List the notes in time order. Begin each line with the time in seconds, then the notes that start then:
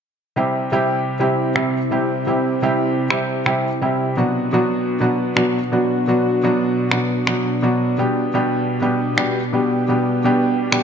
0.36 C3 G3 C4 E4 G4
0.72 C3 G3 C4 E4 G4
1.19 C3 G3 C4 E4 G4
1.55 C3 G3 C4 E4 G4, finger snap
1.91 C3 G3 C4 E4 G4
2.26 C3 G3 C4 E4 G4
2.62 C3 G3 C4 E4 G4
3.10 C3 G3 C4 E4 G4, finger snap
3.46 C3 G3 C4 E4 G4, finger snap
3.81 C3 G3 C4 E4 G4
4.17 B2 F#3 B3 D4 F#4
4.53 B2 F#3 B3 D4 F#4
5.00 B2 F#3 B3 D4 F#4
5.36 B2 F#3 B3 D4 F#4, finger snap
5.72 B2 F#3 B3 D4 F#4
6.08 B2 F#3 B3 D4 F#4
6.43 B2 F#3 B3 D4 F#4
6.91 B2 F#3 B3 D4 F#4, finger snap
7.27 B2 F#3 B3 D4 F#4, finger snap
7.62 B2 F#3 B3 D4 F#4
7.98 B2 G3 B3 D4 G4
8.34 B2 G3 B3 D4 G4
8.81 B2 G3 B3 D4 G4
9.17 B2 G3 B3 D4 G4, finger snap
9.53 B2 G3 B3 D4 G4
9.88 B2 G3 B3 D4 G4
10.24 B2 G3 B3 D4 G4
10.72 B2 G3 B3 D4 G4, finger snap